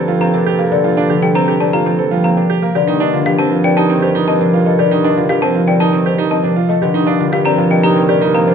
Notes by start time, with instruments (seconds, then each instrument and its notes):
Already playing: bassoon G2, harp D3 F3 A3 A#3, grand piano A4, alto flute A4, marimba C5
0.08 harp G3, grand piano F4
0.21 harp A#3, grand piano C4, marimba F5, xylophone A#5
0.34 harp C3, grand piano D4, marimba A#4
0.46 grand piano G4
0.59 harp A#3, grand piano A#4, marimba F5
0.72 harp D3, grand piano A4, marimba D5
0.84 harp F3, grand piano F4
0.97 grand piano D4, marimba F5
1.10 harp D3, grand piano G4
1.22 harp G3, marimba G4, grand piano A4, xylophone G5
1.35 grand piano C4, marimba C5, xylophone A#5
1.48 grand piano G4
1.60 harp A3, grand piano C4, marimba D5, xylophone A5
1.73 harp A#3, grand piano F4, marimba G4, xylophone A#5
1.86 harp F3, grand piano C4
1.99 grand piano A4, marimba C5
2.11 harp G3, grand piano F4
2.24 harp A#3, grand piano C4, marimba F5, xylophone A#5
2.37 harp C3, grand piano D4, marimba A#4
2.50 grand piano G4
2.62 harp A#3, grand piano A#4, marimba F5
2.75 bassoon G2, harp D3, grand piano G4, alto flute A#4, marimba D5
2.87 harp D#3, grand piano D#4
3.00 grand piano D4, marimba D#5
3.13 harp D3, grand piano F4
3.26 harp F3, grand piano G4, marimba G4, xylophone F5
3.38 grand piano C4, marimba C5, xylophone A5
3.51 grand piano F4
3.64 harp G3, grand piano C4, marimba D5, xylophone G5
3.77 harp C4, grand piano D#4, marimba G4, xylophone A5
3.89 harp D#3, grand piano C4
4.02 grand piano G4, marimba C5
4.15 harp F3, grand piano D#4
4.28 grand piano C4, marimba D#5, xylophone A5
4.41 harp C3, grand piano D4, marimba A#4
4.54 grand piano F4
4.66 grand piano A4, marimba D#5
4.79 harp D3, grand piano G4, marimba D5
4.91 harp D#3, grand piano D#4
5.04 grand piano D4, marimba D#5
5.17 harp D3, grand piano F4
5.29 harp F3, grand piano G4, marimba G4, xylophone F5
5.42 grand piano C4, marimba C5, xylophone A5
5.55 grand piano F4
5.68 harp G3, grand piano C4, marimba D5, xylophone G5
5.80 grand piano D#4, marimba G4, xylophone A5
5.93 harp D#3, grand piano C4
6.06 grand piano G4, marimba C5
6.18 harp F3, grand piano D#4
6.31 grand piano C4, marimba D#5, xylophone A5
6.43 harp C3, grand piano D4, marimba A#4
6.56 grand piano F4
6.69 harp A3, grand piano A4, marimba D#5
6.82 bassoon G2, harp D3, grand piano G4, alto flute A#4, marimba D#5
6.94 harp D#3, grand piano D#4
7.07 grand piano D4, marimba F5
7.19 harp D3, grand piano F4
7.32 harp F3, grand piano G4, marimba G4, xylophone F5
7.45 grand piano C4, marimba D5, xylophone A#5
7.58 harp C3, grand piano F4
7.70 harp G3, grand piano C4, marimba D#5, xylophone G5
7.83 harp A#3, grand piano D#4, marimba G4, xylophone A#5
7.96 harp D#3, grand piano C4
8.09 grand piano G4, marimba D5
8.21 harp F3, grand piano D#4
8.34 harp A#3, grand piano C4, marimba F5, xylophone A#5
8.47 harp C3, grand piano D4, marimba C5